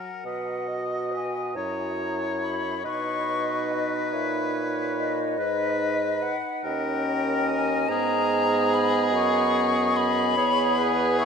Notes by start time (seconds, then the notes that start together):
Already playing: A#4 F#5
0.24 B2 F#4 B4 D#5
0.68 D#5
1.11 B4 G#5
1.55 F#2 E4 C#5 A#5
2.42 B5
2.84 B2 D#4 B4 D#5 C#6
3.71 D#5
4.13 A#2 C#5 E5
4.98 D#5
5.38 G#2 D#4 B4
6.22 F#5
6.64 D#2 C#4 A#4 D#5 G5
7.48 G#5
7.89 G#2 B3 G#4 A#5
8.74 B5
9.13 F#2 C#6
9.97 B5
10.37 E2 B3 G#4 C#5
10.77 B4
11.18 E5 C#6